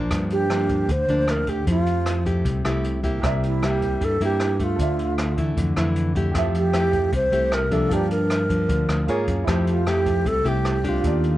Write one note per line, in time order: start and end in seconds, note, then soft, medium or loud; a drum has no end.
0.00 0.47 F3 medium
0.00 0.47 A#3 medium
0.00 0.47 D4 medium
0.10 0.87 G2 soft
0.10 0.85 G2 loud
0.10 kick medium
0.10 cross-stick medium
0.10 closed hi-hat medium
0.30 0.93 G4 medium
0.30 closed hi-hat soft
0.50 0.89 F3 medium
0.50 0.89 A#3 medium
0.50 0.89 D4 medium
0.50 cross-stick medium
0.50 closed hi-hat soft
0.69 kick soft
0.69 closed hi-hat soft
0.89 1.07 D2 medium
0.89 1.65 D3 medium
0.89 1.32 C5 medium
0.89 kick medium
0.89 closed hi-hat medium
1.08 1.63 D2 medium
1.08 1.45 F3 medium
1.08 1.45 A#3 medium
1.08 1.45 D4 medium
1.08 closed hi-hat soft
1.28 1.51 A#4 medium
1.28 cross-stick medium
1.28 closed hi-hat soft
1.47 2.23 A3 medium
1.47 2.23 G4 medium
1.47 1.68 G4 medium
1.47 kick medium
1.47 closed hi-hat soft
1.67 2.41 F2 loud
1.67 2.43 F3 soft
1.67 2.23 F4 medium
1.67 kick medium
1.67 closed hi-hat medium
1.86 closed hi-hat soft
2.06 cross-stick medium
2.06 closed hi-hat soft
2.25 2.61 A3 medium
2.25 2.62 E4 medium
2.25 2.62 G4 medium
2.25 kick soft
2.25 closed hi-hat soft
2.45 2.63 C2 medium
2.45 3.21 C3 medium
2.45 kick medium
2.45 closed hi-hat medium
2.65 3.19 C2 medium
2.65 3.01 A3 medium
2.65 3.01 E4 medium
2.65 3.01 G4 medium
2.65 cross-stick medium
2.65 closed hi-hat soft
2.84 closed hi-hat soft
3.03 3.59 A#3 medium
3.03 3.59 E4 medium
3.03 3.60 G4 medium
3.03 kick medium
3.03 closed hi-hat soft
3.20 3.97 C2 loud
3.20 3.99 C3 medium
3.20 4.74 G4 medium
3.20 4.75 A#4 medium
3.20 kick medium
3.20 cross-stick medium
3.20 closed hi-hat medium
3.24 4.76 D5 medium
3.24 4.77 E5 medium
3.43 3.66 E4 medium
3.43 closed hi-hat soft
3.62 4.18 G3 medium
3.62 4.18 A#3 medium
3.62 4.18 E4 medium
3.62 4.06 G4 medium
3.62 cross-stick medium
3.62 closed hi-hat soft
3.82 kick soft
3.82 closed hi-hat soft
4.01 4.19 G2 medium
4.01 4.78 G2 medium
4.01 4.22 A4 medium
4.01 kick medium
4.01 closed hi-hat medium
4.21 4.75 G2 medium
4.21 4.57 G3 medium
4.21 4.57 A#3 medium
4.21 4.57 E4 medium
4.21 closed hi-hat soft
4.25 4.65 G4 medium
4.40 cross-stick medium
4.40 closed hi-hat soft
4.59 5.35 A3 medium
4.59 kick medium
4.59 closed hi-hat soft
4.64 5.40 F4 medium
4.76 5.53 D2 loud
4.76 5.56 D3 medium
4.76 6.30 A4 soft
4.76 6.32 C5 soft
4.76 kick medium
4.76 closed hi-hat medium
4.80 6.33 D5 soft
4.80 6.34 E5 medium
4.99 closed hi-hat soft
5.18 cross-stick medium
5.18 closed hi-hat soft
5.37 5.74 E3 medium
5.37 5.74 A3 medium
5.37 5.74 E4 medium
5.37 kick medium
5.37 closed hi-hat soft
5.57 5.75 F2 medium
5.57 6.33 D3 medium
5.57 kick medium
5.57 closed hi-hat medium
5.76 6.31 F2 medium
5.76 6.13 E3 medium
5.76 6.13 A3 medium
5.76 6.13 E4 medium
5.76 cross-stick medium
5.76 closed hi-hat soft
5.96 closed hi-hat soft
6.15 6.71 A3 medium
6.15 6.72 E4 medium
6.15 6.72 G4 medium
6.15 kick medium
6.15 closed hi-hat soft
6.31 7.09 F2 loud
6.31 7.11 F3 medium
6.31 7.67 G4 medium
6.31 7.69 A4 medium
6.31 kick medium
6.31 cross-stick medium
6.31 closed hi-hat medium
6.36 7.69 C5 medium
6.36 7.70 E5 medium
6.54 7.11 G4 medium
6.54 closed hi-hat soft
6.73 7.13 A3 medium
6.73 7.13 E4 medium
6.73 7.13 G4 medium
6.73 cross-stick medium
6.73 closed hi-hat soft
6.93 kick soft
6.93 closed hi-hat soft
7.12 7.31 C2 medium
7.12 7.89 C3 medium
7.12 7.56 C5 loud
7.12 kick medium
7.12 closed hi-hat medium
7.32 7.87 C2 medium
7.32 7.68 A3 medium
7.32 7.69 E4 medium
7.32 7.69 G4 medium
7.32 closed hi-hat soft
7.52 7.74 A#4 medium
7.52 cross-stick medium
7.52 closed hi-hat soft
7.70 8.47 F3 medium
7.70 8.47 A#3 medium
7.70 8.47 D4 medium
7.70 7.90 G4 soft
7.70 7.91 A4 soft
7.70 7.95 A4 medium
7.70 7.91 C5 soft
7.70 7.92 E5 soft
7.70 kick medium
7.70 closed hi-hat soft
7.88 8.65 G2 loud
7.88 8.67 G2 medium
7.88 9.05 F4 soft
7.88 9.07 A#4 soft
7.88 9.06 A5 soft
7.88 kick medium
7.88 closed hi-hat medium
7.93 8.11 G4 medium
7.93 9.08 D5 medium
8.11 9.25 A#4 medium
8.11 closed hi-hat soft
8.30 cross-stick medium
8.30 closed hi-hat soft
8.49 9.06 F3 medium
8.49 9.06 A#3 medium
8.49 9.06 D4 medium
8.49 kick medium
8.49 closed hi-hat soft
8.69 8.88 D2 medium
8.69 9.07 D3 medium
8.69 kick medium
8.69 closed hi-hat medium
8.89 9.07 D2 medium
8.89 cross-stick medium
8.89 closed hi-hat soft
9.07 9.26 G#2 medium
9.07 9.45 A#3 medium
9.07 9.47 F4 medium
9.07 9.45 F4 medium
9.07 9.47 G#4 medium
9.07 9.45 G#4 medium
9.07 9.48 A#4 medium
9.07 9.48 C#5 medium
9.07 closed hi-hat soft
9.27 9.46 F#2 medium
9.27 kick medium
9.27 closed hi-hat soft
9.44 10.22 F2 loud
9.44 10.24 F3 medium
9.44 9.84 A3 soft
9.44 10.99 E4 medium
9.44 11.00 G4 medium
9.44 11.01 A4 medium
9.44 kick medium
9.44 cross-stick medium
9.44 closed hi-hat medium
9.48 9.84 E4 medium
9.48 9.84 G4 medium
9.48 11.02 C5 medium
9.67 9.90 F4 medium
9.67 closed hi-hat soft
9.87 10.43 A3 medium
9.87 10.43 E4 medium
9.87 10.43 G4 medium
9.87 10.29 G4 medium
9.87 cross-stick medium
9.87 closed hi-hat soft
10.06 kick medium
10.06 closed hi-hat soft
10.25 10.44 C2 medium
10.25 11.02 C3 medium
10.25 10.50 A4 loud
10.25 kick medium
10.25 closed hi-hat medium
10.44 11.00 C2 loud
10.44 10.81 A3 medium
10.44 10.81 E4 medium
10.44 10.82 G4 medium
10.44 10.90 G4 medium
10.44 closed hi-hat soft
10.65 cross-stick medium
10.65 closed hi-hat soft
10.84 11.38 A3 medium
10.84 11.38 D4 medium
10.84 11.38 G4 medium
10.84 kick medium
10.84 closed hi-hat soft
10.88 11.38 F4 medium
11.01 11.38 D#2 loud
11.01 11.38 D#3 medium
11.01 11.38 F4 medium
11.01 11.38 G4 soft
11.01 kick medium
11.01 closed hi-hat medium
11.05 11.38 A4 soft
11.05 11.38 D5 medium
11.23 closed hi-hat soft